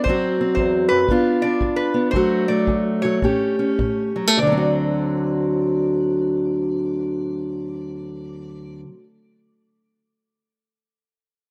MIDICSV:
0, 0, Header, 1, 4, 480
1, 0, Start_track
1, 0, Tempo, 519031
1, 57, Time_signature, 4, 2, 24, 8
1, 1979, Tempo, 552486
1, 3419, Tempo, 589391
1, 9698, End_track
2, 0, Start_track
2, 0, Title_t, "Resonator guitar played with a steel bar"
2, 0, Program_c, 0, 25
2, 35, Note_on_c, 0, 72, 109
2, 495, Note_off_c, 0, 72, 0
2, 506, Note_on_c, 0, 72, 80
2, 815, Note_off_c, 0, 72, 0
2, 819, Note_on_c, 0, 71, 97
2, 1312, Note_on_c, 0, 74, 91
2, 1335, Note_off_c, 0, 71, 0
2, 1631, Note_on_c, 0, 71, 86
2, 1654, Note_off_c, 0, 74, 0
2, 1946, Note_off_c, 0, 71, 0
2, 1950, Note_on_c, 0, 72, 94
2, 2275, Note_on_c, 0, 74, 86
2, 2287, Note_off_c, 0, 72, 0
2, 2576, Note_off_c, 0, 74, 0
2, 2743, Note_on_c, 0, 73, 86
2, 3683, Note_off_c, 0, 73, 0
2, 3898, Note_on_c, 0, 74, 81
2, 7495, Note_off_c, 0, 74, 0
2, 9698, End_track
3, 0, Start_track
3, 0, Title_t, "Steel-string acoustic guitar"
3, 0, Program_c, 1, 25
3, 68, Note_on_c, 1, 38, 77
3, 72, Note_on_c, 1, 54, 59
3, 83, Note_on_c, 1, 60, 68
3, 88, Note_on_c, 1, 66, 76
3, 365, Note_off_c, 1, 60, 0
3, 376, Note_on_c, 1, 60, 59
3, 502, Note_off_c, 1, 38, 0
3, 543, Note_on_c, 1, 40, 64
3, 840, Note_off_c, 1, 40, 0
3, 843, Note_on_c, 1, 42, 61
3, 994, Note_off_c, 1, 60, 0
3, 1000, Note_off_c, 1, 66, 0
3, 1011, Note_off_c, 1, 42, 0
3, 1014, Note_off_c, 1, 54, 0
3, 1014, Note_on_c, 1, 43, 73
3, 1022, Note_on_c, 1, 59, 55
3, 1026, Note_on_c, 1, 62, 57
3, 1032, Note_on_c, 1, 65, 68
3, 1322, Note_off_c, 1, 62, 0
3, 1332, Note_on_c, 1, 62, 53
3, 1458, Note_off_c, 1, 43, 0
3, 1495, Note_on_c, 1, 43, 75
3, 1784, Note_off_c, 1, 59, 0
3, 1795, Note_on_c, 1, 59, 55
3, 1946, Note_off_c, 1, 43, 0
3, 1954, Note_off_c, 1, 59, 0
3, 1966, Note_off_c, 1, 62, 0
3, 1970, Note_off_c, 1, 65, 0
3, 1978, Note_on_c, 1, 38, 74
3, 1989, Note_on_c, 1, 54, 61
3, 1996, Note_on_c, 1, 57, 68
3, 2000, Note_on_c, 1, 66, 73
3, 2278, Note_off_c, 1, 57, 0
3, 2288, Note_on_c, 1, 57, 52
3, 2413, Note_off_c, 1, 38, 0
3, 2449, Note_on_c, 1, 38, 73
3, 2758, Note_off_c, 1, 54, 0
3, 2768, Note_on_c, 1, 54, 64
3, 2893, Note_off_c, 1, 38, 0
3, 2915, Note_off_c, 1, 66, 0
3, 2920, Note_on_c, 1, 45, 64
3, 2921, Note_off_c, 1, 57, 0
3, 2928, Note_off_c, 1, 54, 0
3, 2931, Note_on_c, 1, 57, 55
3, 2936, Note_on_c, 1, 61, 53
3, 2940, Note_on_c, 1, 67, 56
3, 3229, Note_off_c, 1, 61, 0
3, 3239, Note_on_c, 1, 61, 53
3, 3379, Note_off_c, 1, 45, 0
3, 3411, Note_on_c, 1, 45, 74
3, 3709, Note_off_c, 1, 57, 0
3, 3712, Note_on_c, 1, 54, 60
3, 3807, Note_off_c, 1, 54, 0
3, 3807, Note_on_c, 1, 57, 55
3, 3854, Note_off_c, 1, 45, 0
3, 3871, Note_off_c, 1, 61, 0
3, 3878, Note_off_c, 1, 67, 0
3, 3889, Note_on_c, 1, 38, 67
3, 3893, Note_off_c, 1, 57, 0
3, 3928, Note_on_c, 1, 50, 66
3, 3967, Note_on_c, 1, 54, 67
3, 4007, Note_on_c, 1, 60, 64
3, 4052, Note_on_c, 1, 66, 53
3, 7519, Note_off_c, 1, 38, 0
3, 7558, Note_off_c, 1, 50, 0
3, 7597, Note_off_c, 1, 54, 0
3, 7637, Note_off_c, 1, 60, 0
3, 7682, Note_off_c, 1, 66, 0
3, 9698, End_track
4, 0, Start_track
4, 0, Title_t, "Drums"
4, 55, Note_on_c, 9, 36, 75
4, 147, Note_off_c, 9, 36, 0
4, 528, Note_on_c, 9, 36, 64
4, 620, Note_off_c, 9, 36, 0
4, 1004, Note_on_c, 9, 36, 67
4, 1096, Note_off_c, 9, 36, 0
4, 1487, Note_on_c, 9, 36, 64
4, 1579, Note_off_c, 9, 36, 0
4, 1974, Note_on_c, 9, 36, 65
4, 2062, Note_off_c, 9, 36, 0
4, 2443, Note_on_c, 9, 36, 64
4, 2529, Note_off_c, 9, 36, 0
4, 2920, Note_on_c, 9, 36, 68
4, 3007, Note_off_c, 9, 36, 0
4, 3413, Note_on_c, 9, 36, 64
4, 3495, Note_off_c, 9, 36, 0
4, 9698, End_track
0, 0, End_of_file